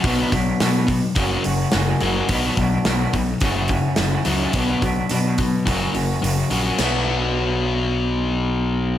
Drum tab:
CC |--------|--------|--------|x-------|
HH |oooooooo|oooooooo|oooooooo|--------|
SD |--o---o-|--o---o-|--------|o-------|
BD |oo-oo---|oo-ooo--|oo-oo---|--------|